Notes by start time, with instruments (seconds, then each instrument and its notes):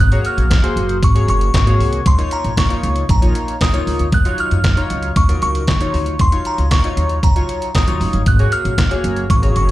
0.00 synth bell F#6
0.12 analog polysynth A#3 F#4 G#4 C#5, closed hi-hat
0.25 synth bell F6, closed hi-hat
0.37 upright bass A#1, closed hi-hat
0.51 kick, snare, clap, closed hi-hat
0.63 analog polysynth A#3 F#4 G#4 C5, closed hi-hat
0.76 upright bass F#1, closed hi-hat
0.89 closed hi-hat
1.03 upright bass G#1, synth bell C#6, kick, closed hi-hat
1.15 analog polysynth A#3 F#4 G#4 C#5, closed hi-hat
1.28 upright bass F#1, synth bell C#6, closed hi-hat
1.41 closed hi-hat
1.54 upright bass G#1, kick, snare, clap, closed hi-hat
1.66 analog polysynth A#3 F#4 G#4 C#5, closed hi-hat
1.79 upright bass C2, open hi-hat
1.93 closed hi-hat
2.06 upright bass C#2, synth bell C6, kick, closed hi-hat
2.18 analog polysynth A#3 D#4 F4 C#5, closed hi-hat
2.31 synth bell A#5, closed hi-hat
2.44 upright bass A#1, closed hi-hat
2.57 synth bell C#6, kick, snare, clap, closed hi-hat
2.69 analog polysynth A#3 D#4 F4 C#5, closed hi-hat
2.83 upright bass C#2, closed hi-hat
2.96 closed hi-hat
3.09 upright bass A#1, synth bell A#5, kick, closed hi-hat
3.21 analog polysynth A#3 D#4 F4 C#5, closed hi-hat
3.35 closed hi-hat
3.48 closed hi-hat
3.61 synth bell D#6, kick, snare, clap, closed hi-hat
3.73 upright bass C#2, analog polysynth A#3 D#4 F4 C#5, closed hi-hat
3.87 upright bass C#2, open hi-hat
3.99 upright bass D2, closed hi-hat
4.12 upright bass D#2, synth bell F#6, kick, closed hi-hat
4.25 analog polysynth F#3 D#4 F4 C#5, closed hi-hat
4.38 synth bell F6, closed hi-hat
4.51 upright bass F#2, closed hi-hat
4.64 kick, snare, clap, closed hi-hat
4.76 analog polysynth F#3 D#4 F4 C#5, closed hi-hat
4.90 upright bass C#2, closed hi-hat
5.03 closed hi-hat
5.16 upright bass D#2, synth bell C#6, kick, closed hi-hat
5.29 analog polysynth F#3 D#4 F4 A#4, closed hi-hat
5.42 upright bass C#2, synth bell C#6, closed hi-hat
5.55 closed hi-hat
5.67 upright bass D#2, kick, snare, clap, closed hi-hat
5.80 analog polysynth F#3 D#4 F4 C#5, closed hi-hat
5.94 upright bass D2, open hi-hat
6.06 closed hi-hat
6.19 upright bass D#2, synth bell C6, kick, closed hi-hat
6.32 analog polysynth F#3 D#4 F4 C#5, closed hi-hat
6.45 synth bell A#5, closed hi-hat
6.58 upright bass C#2, closed hi-hat
6.71 synth bell C#6, kick, snare, clap, closed hi-hat
6.84 analog polysynth F#3 D#4 F4 C#5, closed hi-hat
6.97 upright bass D#2, closed hi-hat
7.09 closed hi-hat
7.23 upright bass C#2, synth bell A#5, kick, closed hi-hat
7.36 analog polysynth F#3 D#4 F4 C#5, closed hi-hat
7.49 closed hi-hat
7.62 closed hi-hat
7.75 synth bell D#6, kick, snare, clap, closed hi-hat
7.87 upright bass D#2, analog polysynth F#3 D#4 F4 C#5, closed hi-hat
8.00 upright bass F#1, open hi-hat
8.13 upright bass G1, closed hi-hat
8.26 upright bass G#1, synth bell F#6, kick, closed hi-hat
8.39 analog polysynth A#3 F#4 G#4 C#5, closed hi-hat
8.52 synth bell F6, closed hi-hat
8.65 upright bass A#1, closed hi-hat
8.78 kick, snare, clap, closed hi-hat
8.90 analog polysynth A#3 F#4 G#4 C#5, closed hi-hat
9.04 upright bass F#1, closed hi-hat
9.16 closed hi-hat
9.30 upright bass G#1, synth bell C#6, kick, closed hi-hat
9.42 analog polysynth A#3 F#4 G#4 C#5, closed hi-hat
9.56 upright bass F#1, synth bell C#6, closed hi-hat